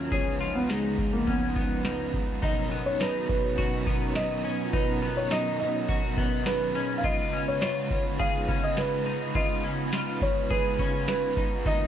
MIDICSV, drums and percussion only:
0, 0, Header, 1, 2, 480
1, 0, Start_track
1, 0, Tempo, 576923
1, 98, Time_signature, 4, 2, 24, 8
1, 9876, End_track
2, 0, Start_track
2, 0, Title_t, "Drums"
2, 98, Note_on_c, 9, 36, 92
2, 99, Note_on_c, 9, 42, 61
2, 181, Note_off_c, 9, 36, 0
2, 182, Note_off_c, 9, 42, 0
2, 338, Note_on_c, 9, 42, 48
2, 421, Note_off_c, 9, 42, 0
2, 575, Note_on_c, 9, 42, 66
2, 578, Note_on_c, 9, 54, 63
2, 581, Note_on_c, 9, 38, 118
2, 658, Note_off_c, 9, 42, 0
2, 661, Note_off_c, 9, 54, 0
2, 664, Note_off_c, 9, 38, 0
2, 819, Note_on_c, 9, 36, 89
2, 823, Note_on_c, 9, 42, 50
2, 902, Note_off_c, 9, 36, 0
2, 907, Note_off_c, 9, 42, 0
2, 1061, Note_on_c, 9, 42, 67
2, 1062, Note_on_c, 9, 36, 85
2, 1144, Note_off_c, 9, 42, 0
2, 1145, Note_off_c, 9, 36, 0
2, 1299, Note_on_c, 9, 36, 91
2, 1301, Note_on_c, 9, 42, 43
2, 1382, Note_off_c, 9, 36, 0
2, 1384, Note_off_c, 9, 42, 0
2, 1534, Note_on_c, 9, 42, 55
2, 1537, Note_on_c, 9, 38, 92
2, 1537, Note_on_c, 9, 54, 54
2, 1618, Note_off_c, 9, 42, 0
2, 1620, Note_off_c, 9, 38, 0
2, 1620, Note_off_c, 9, 54, 0
2, 1779, Note_on_c, 9, 36, 85
2, 1782, Note_on_c, 9, 42, 46
2, 1863, Note_off_c, 9, 36, 0
2, 1865, Note_off_c, 9, 42, 0
2, 2020, Note_on_c, 9, 36, 113
2, 2021, Note_on_c, 9, 42, 69
2, 2021, Note_on_c, 9, 49, 100
2, 2103, Note_off_c, 9, 36, 0
2, 2104, Note_off_c, 9, 42, 0
2, 2104, Note_off_c, 9, 49, 0
2, 2258, Note_on_c, 9, 42, 47
2, 2342, Note_off_c, 9, 42, 0
2, 2496, Note_on_c, 9, 42, 73
2, 2499, Note_on_c, 9, 54, 72
2, 2502, Note_on_c, 9, 38, 117
2, 2579, Note_off_c, 9, 42, 0
2, 2582, Note_off_c, 9, 54, 0
2, 2585, Note_off_c, 9, 38, 0
2, 2740, Note_on_c, 9, 36, 89
2, 2744, Note_on_c, 9, 42, 54
2, 2823, Note_off_c, 9, 36, 0
2, 2827, Note_off_c, 9, 42, 0
2, 2979, Note_on_c, 9, 42, 66
2, 2982, Note_on_c, 9, 36, 83
2, 3062, Note_off_c, 9, 42, 0
2, 3065, Note_off_c, 9, 36, 0
2, 3218, Note_on_c, 9, 36, 93
2, 3219, Note_on_c, 9, 42, 50
2, 3302, Note_off_c, 9, 36, 0
2, 3303, Note_off_c, 9, 42, 0
2, 3454, Note_on_c, 9, 42, 60
2, 3457, Note_on_c, 9, 38, 94
2, 3457, Note_on_c, 9, 54, 66
2, 3537, Note_off_c, 9, 42, 0
2, 3540, Note_off_c, 9, 38, 0
2, 3540, Note_off_c, 9, 54, 0
2, 3701, Note_on_c, 9, 42, 55
2, 3784, Note_off_c, 9, 42, 0
2, 3938, Note_on_c, 9, 36, 105
2, 3938, Note_on_c, 9, 42, 67
2, 4021, Note_off_c, 9, 42, 0
2, 4022, Note_off_c, 9, 36, 0
2, 4176, Note_on_c, 9, 42, 46
2, 4259, Note_off_c, 9, 42, 0
2, 4413, Note_on_c, 9, 42, 74
2, 4415, Note_on_c, 9, 54, 69
2, 4419, Note_on_c, 9, 38, 127
2, 4496, Note_off_c, 9, 42, 0
2, 4499, Note_off_c, 9, 54, 0
2, 4502, Note_off_c, 9, 38, 0
2, 4662, Note_on_c, 9, 42, 53
2, 4745, Note_off_c, 9, 42, 0
2, 4896, Note_on_c, 9, 42, 75
2, 4900, Note_on_c, 9, 36, 92
2, 4979, Note_off_c, 9, 42, 0
2, 4983, Note_off_c, 9, 36, 0
2, 5137, Note_on_c, 9, 36, 90
2, 5138, Note_on_c, 9, 42, 47
2, 5220, Note_off_c, 9, 36, 0
2, 5221, Note_off_c, 9, 42, 0
2, 5373, Note_on_c, 9, 42, 62
2, 5375, Note_on_c, 9, 38, 98
2, 5375, Note_on_c, 9, 54, 58
2, 5456, Note_off_c, 9, 42, 0
2, 5459, Note_off_c, 9, 38, 0
2, 5459, Note_off_c, 9, 54, 0
2, 5618, Note_on_c, 9, 42, 55
2, 5701, Note_off_c, 9, 42, 0
2, 5855, Note_on_c, 9, 42, 66
2, 5857, Note_on_c, 9, 36, 105
2, 5938, Note_off_c, 9, 42, 0
2, 5940, Note_off_c, 9, 36, 0
2, 6095, Note_on_c, 9, 42, 53
2, 6178, Note_off_c, 9, 42, 0
2, 6334, Note_on_c, 9, 42, 70
2, 6336, Note_on_c, 9, 54, 67
2, 6340, Note_on_c, 9, 38, 116
2, 6417, Note_off_c, 9, 42, 0
2, 6419, Note_off_c, 9, 54, 0
2, 6423, Note_off_c, 9, 38, 0
2, 6579, Note_on_c, 9, 36, 91
2, 6583, Note_on_c, 9, 42, 55
2, 6662, Note_off_c, 9, 36, 0
2, 6666, Note_off_c, 9, 42, 0
2, 6819, Note_on_c, 9, 42, 73
2, 6821, Note_on_c, 9, 36, 101
2, 6902, Note_off_c, 9, 42, 0
2, 6905, Note_off_c, 9, 36, 0
2, 7058, Note_on_c, 9, 36, 93
2, 7060, Note_on_c, 9, 42, 47
2, 7142, Note_off_c, 9, 36, 0
2, 7143, Note_off_c, 9, 42, 0
2, 7295, Note_on_c, 9, 42, 69
2, 7297, Note_on_c, 9, 38, 91
2, 7297, Note_on_c, 9, 54, 58
2, 7378, Note_off_c, 9, 42, 0
2, 7380, Note_off_c, 9, 38, 0
2, 7380, Note_off_c, 9, 54, 0
2, 7541, Note_on_c, 9, 42, 53
2, 7624, Note_off_c, 9, 42, 0
2, 7778, Note_on_c, 9, 42, 72
2, 7779, Note_on_c, 9, 36, 96
2, 7861, Note_off_c, 9, 42, 0
2, 7862, Note_off_c, 9, 36, 0
2, 8018, Note_on_c, 9, 42, 52
2, 8102, Note_off_c, 9, 42, 0
2, 8254, Note_on_c, 9, 42, 72
2, 8256, Note_on_c, 9, 54, 67
2, 8260, Note_on_c, 9, 38, 114
2, 8337, Note_off_c, 9, 42, 0
2, 8340, Note_off_c, 9, 54, 0
2, 8343, Note_off_c, 9, 38, 0
2, 8500, Note_on_c, 9, 36, 97
2, 8503, Note_on_c, 9, 42, 52
2, 8583, Note_off_c, 9, 36, 0
2, 8586, Note_off_c, 9, 42, 0
2, 8740, Note_on_c, 9, 42, 77
2, 8742, Note_on_c, 9, 36, 101
2, 8824, Note_off_c, 9, 42, 0
2, 8825, Note_off_c, 9, 36, 0
2, 8979, Note_on_c, 9, 36, 83
2, 8982, Note_on_c, 9, 42, 47
2, 9063, Note_off_c, 9, 36, 0
2, 9065, Note_off_c, 9, 42, 0
2, 9217, Note_on_c, 9, 42, 67
2, 9219, Note_on_c, 9, 38, 101
2, 9219, Note_on_c, 9, 54, 64
2, 9300, Note_off_c, 9, 42, 0
2, 9302, Note_off_c, 9, 38, 0
2, 9302, Note_off_c, 9, 54, 0
2, 9459, Note_on_c, 9, 36, 91
2, 9462, Note_on_c, 9, 42, 50
2, 9542, Note_off_c, 9, 36, 0
2, 9545, Note_off_c, 9, 42, 0
2, 9698, Note_on_c, 9, 36, 103
2, 9698, Note_on_c, 9, 42, 65
2, 9781, Note_off_c, 9, 36, 0
2, 9781, Note_off_c, 9, 42, 0
2, 9876, End_track
0, 0, End_of_file